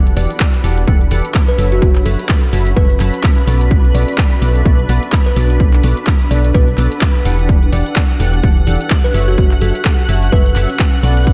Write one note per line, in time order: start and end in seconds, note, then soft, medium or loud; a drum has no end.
0.00 0.15 E1 loud
0.00 0.14 E3 medium
0.00 0.69 B3 medium
0.00 1.82 D4 medium
0.00 0.14 G4 medium
0.00 0.14 A4 medium
0.00 7.50 B4 medium
0.00 0.14 D5 medium
0.00 0.69 D5 medium
0.00 0.14 F#5 medium
0.00 7.49 A5 medium
0.00 7.50 B5 medium
0.07 closed hi-hat soft
0.17 0.27 E1 loud
0.17 0.30 E3 medium
0.17 0.30 G4 medium
0.17 0.30 A4 medium
0.17 0.30 D5 medium
0.17 0.30 F#5 loud
0.17 open hi-hat loud
0.30 closed hi-hat medium
0.40 kick loud
0.40 clap loud
0.40 closed hi-hat medium
0.54 closed hi-hat soft
0.64 0.86 E1 medium
0.64 0.83 E3 medium
0.64 0.83 G4 medium
0.64 0.83 A4 medium
0.64 0.83 D5 medium
0.64 0.83 F#5 medium
0.64 open hi-hat loud
0.78 2.58 F#5 medium
0.78 closed hi-hat medium
0.88 1.09 E1 loud
0.88 1.01 E3 medium
0.88 1.01 G4 medium
0.88 1.01 A4 medium
0.88 1.01 D5 medium
0.88 1.01 F#5 loud
0.88 kick loud
0.88 closed hi-hat medium
1.01 closed hi-hat soft
1.11 1.22 E1 medium
1.11 1.25 E3 medium
1.11 1.25 G4 medium
1.11 1.25 A4 medium
1.11 1.25 D5 medium
1.11 1.25 F#5 loud
1.11 open hi-hat loud
1.25 closed hi-hat medium
1.34 kick loud
1.34 clap loud
1.34 closed hi-hat medium
1.48 1.58 B4 medium
1.48 closed hi-hat soft
1.58 2.04 F#1 loud
1.58 2.03 F#3 medium
1.58 2.03 F#4 medium
1.58 2.03 A4 medium
1.58 2.03 C#5 medium
1.58 2.03 E5 medium
1.58 open hi-hat loud
1.72 1.78 F#4 medium
1.72 closed hi-hat medium
1.82 3.71 C#4 medium
1.82 1.91 F#4 medium
1.82 kick loud
1.82 closed hi-hat medium
1.95 clap soft
1.95 closed hi-hat soft
2.06 2.16 F#1 loud
2.06 2.19 F#3 medium
2.06 2.19 F#4 medium
2.06 2.43 A4 medium
2.06 2.19 A4 medium
2.06 2.19 C#5 medium
2.06 2.19 E5 medium
2.06 open hi-hat loud
2.19 closed hi-hat medium
2.29 5.24 F#4 medium
2.29 kick loud
2.29 clap loud
2.29 closed hi-hat medium
2.43 closed hi-hat soft
2.53 2.75 F#1 medium
2.53 2.72 F#3 medium
2.53 2.72 F#4 medium
2.53 2.72 A4 medium
2.53 2.72 C#5 medium
2.53 2.72 E5 medium
2.53 open hi-hat loud
2.67 5.24 E5 medium
2.67 closed hi-hat medium
2.77 2.98 F#1 loud
2.77 2.90 F#3 medium
2.77 2.90 F#4 medium
2.77 2.90 A4 medium
2.77 3.14 B4 medium
2.77 2.90 C#5 medium
2.77 2.90 E5 loud
2.77 kick loud
2.77 closed hi-hat medium
2.90 closed hi-hat soft
3.00 3.11 F#1 loud
3.00 3.14 F#3 medium
3.00 3.14 F#4 medium
3.00 3.14 A4 medium
3.00 3.14 C#5 medium
3.00 3.14 E5 loud
3.00 clap soft
3.00 open hi-hat loud
3.14 closed hi-hat medium
3.24 kick loud
3.24 clap loud
3.24 closed hi-hat medium
3.38 closed hi-hat soft
3.47 3.93 B1 loud
3.47 3.92 B3 medium
3.47 3.92 F#4 medium
3.47 3.92 A4 medium
3.47 3.92 B4 medium
3.47 3.92 D5 medium
3.47 open hi-hat loud
3.61 closed hi-hat medium
3.71 9.38 D4 medium
3.71 kick loud
3.71 closed hi-hat medium
3.85 closed hi-hat soft
3.95 4.05 B1 loud
3.95 4.08 B3 medium
3.95 4.08 F#4 medium
3.95 4.08 A4 medium
3.95 4.08 B4 medium
3.95 4.08 D5 medium
3.95 4.08 D5 loud
3.95 open hi-hat loud
4.08 closed hi-hat medium
4.18 kick loud
4.18 clap loud
4.18 closed hi-hat soft
4.32 closed hi-hat soft
4.37 8.25 B4 medium
4.42 4.64 B1 medium
4.42 4.61 B3 medium
4.42 4.61 F#4 medium
4.42 4.61 A4 medium
4.42 4.61 B4 medium
4.42 4.61 D5 medium
4.42 open hi-hat loud
4.56 closed hi-hat soft
4.65 4.87 B1 loud
4.65 4.79 B3 medium
4.65 4.79 F#4 medium
4.65 4.79 A4 medium
4.65 4.79 B4 medium
4.65 4.79 D5 loud
4.65 kick loud
4.65 closed hi-hat medium
4.79 closed hi-hat soft
4.89 5.00 B1 loud
4.89 5.03 B3 medium
4.89 5.03 F#4 medium
4.89 5.03 A4 medium
4.89 5.03 B4 medium
4.89 5.03 D5 loud
4.89 open hi-hat loud
5.02 10.14 F#5 medium
5.02 closed hi-hat medium
5.12 kick loud
5.12 clap loud
5.12 closed hi-hat medium
5.26 5.36 B4 medium
5.26 closed hi-hat soft
5.36 5.82 B1 medium
5.36 5.81 B3 medium
5.36 5.81 F#4 medium
5.36 5.81 A4 medium
5.36 5.81 B4 medium
5.36 5.81 D5 medium
5.36 open hi-hat loud
5.50 closed hi-hat medium
5.60 kick loud
5.60 closed hi-hat soft
5.73 clap soft
5.73 closed hi-hat soft
5.83 5.94 B1 loud
5.83 5.97 B3 medium
5.83 5.97 F#4 medium
5.83 5.97 A4 medium
5.83 5.97 B4 medium
5.83 5.97 D5 loud
5.83 open hi-hat loud
5.97 closed hi-hat medium
6.07 kick loud
6.07 clap loud
6.07 closed hi-hat soft
6.21 closed hi-hat soft
6.31 6.53 B1 medium
6.31 6.50 B3 medium
6.31 6.50 F#4 medium
6.31 6.50 A4 medium
6.31 6.50 B4 medium
6.31 6.40 D5 medium
6.31 6.50 D5 medium
6.31 open hi-hat loud
6.45 6.51 D5 medium
6.45 closed hi-hat soft
6.54 6.76 B1 loud
6.54 6.68 B3 medium
6.54 6.68 F#4 medium
6.54 6.68 A4 medium
6.54 7.21 B4 medium
6.54 6.68 B4 medium
6.54 6.68 D5 loud
6.54 kick loud
6.54 closed hi-hat medium
6.68 closed hi-hat soft
6.78 6.89 B1 loud
6.78 6.92 B3 medium
6.78 6.92 F#4 medium
6.78 6.92 A4 medium
6.78 6.92 B4 medium
6.78 6.92 D5 loud
6.78 clap soft
6.78 open hi-hat loud
6.92 closed hi-hat soft
7.01 kick loud
7.01 clap loud
7.01 closed hi-hat medium
7.15 closed hi-hat soft
7.25 7.71 E1 medium
7.25 7.70 E3 medium
7.25 7.70 G4 medium
7.25 7.70 A4 medium
7.25 7.70 D5 medium
7.25 7.70 F#5 medium
7.25 open hi-hat loud
7.39 closed hi-hat soft
7.49 11.33 F#5 medium
7.49 11.33 F#6 medium
7.49 kick loud
7.49 closed hi-hat soft
7.63 closed hi-hat soft
7.73 7.83 E1 loud
7.73 7.86 E3 medium
7.73 7.86 G4 medium
7.73 7.86 A4 medium
7.73 7.86 D5 medium
7.73 7.86 F#5 loud
7.73 open hi-hat loud
7.82 9.38 G4 medium
7.86 closed hi-hat medium
7.96 kick loud
7.96 clap loud
7.96 closed hi-hat medium
8.10 closed hi-hat soft
8.20 8.42 E1 loud
8.20 8.39 E3 medium
8.20 8.39 G4 medium
8.20 8.39 A4 medium
8.20 8.39 D5 medium
8.20 8.39 F#5 medium
8.20 open hi-hat loud
8.34 11.33 A5 medium
8.34 closed hi-hat soft
8.43 8.65 E1 loud
8.43 8.57 E3 medium
8.43 8.57 G4 medium
8.43 8.57 A4 medium
8.43 8.57 D5 medium
8.43 8.57 F#5 loud
8.43 kick loud
8.43 closed hi-hat soft
8.57 closed hi-hat soft
8.67 8.78 E1 medium
8.67 8.81 E3 medium
8.67 8.81 G4 medium
8.67 8.81 A4 medium
8.67 8.81 D5 medium
8.67 8.81 F#5 loud
8.67 open hi-hat loud
8.81 closed hi-hat soft
8.90 kick loud
8.90 clap loud
8.90 closed hi-hat medium
9.04 9.14 B4 medium
9.04 closed hi-hat soft
9.14 9.60 F#1 loud
9.14 9.59 F#3 medium
9.14 9.59 F#4 medium
9.14 9.59 A4 medium
9.14 9.59 C#5 medium
9.14 9.59 E5 medium
9.14 open hi-hat loud
9.28 9.34 F#4 medium
9.28 closed hi-hat soft
9.38 11.27 C#4 medium
9.38 9.47 F#4 medium
9.38 kick loud
9.38 closed hi-hat soft
9.51 clap soft
9.51 closed hi-hat soft
9.61 9.72 F#1 loud
9.61 9.75 F#3 medium
9.61 9.75 F#4 medium
9.61 9.75 A4 medium
9.61 9.99 A4 medium
9.61 9.75 C#5 medium
9.61 9.75 E5 loud
9.61 open hi-hat loud
9.75 closed hi-hat medium
9.85 kick loud
9.85 clap loud
9.85 closed hi-hat medium
9.99 closed hi-hat soft
10.07 10.30 F#1 medium
10.07 10.28 F#3 medium
10.07 10.28 F#4 medium
10.07 10.28 A4 medium
10.07 10.28 C#5 medium
10.07 11.33 E5 medium
10.07 10.28 E5 medium
10.07 open hi-hat loud
10.11 11.33 F#4 medium
10.23 closed hi-hat medium
10.32 10.54 F#1 loud
10.32 10.46 F#3 medium
10.32 10.46 F#4 medium
10.32 10.46 A4 medium
10.32 10.70 B4 medium
10.32 10.46 C#5 medium
10.32 10.46 E5 loud
10.32 kick loud
10.32 closed hi-hat medium
10.46 closed hi-hat soft
10.56 10.67 F#1 medium
10.56 10.69 F#3 medium
10.56 10.69 F#4 medium
10.56 10.70 A4 medium
10.56 10.69 C#5 medium
10.56 10.69 E5 medium
10.56 clap soft
10.56 open hi-hat loud
10.70 closed hi-hat medium
10.79 kick loud
10.79 clap loud
10.79 closed hi-hat medium
10.93 closed hi-hat soft
11.03 11.33 B1 loud
11.03 11.33 B3 medium
11.03 11.33 F#4 medium
11.03 11.33 A4 medium
11.03 11.33 B4 medium
11.03 11.33 D5 medium
11.03 open hi-hat loud
11.17 closed hi-hat medium
11.27 kick loud
11.27 closed hi-hat medium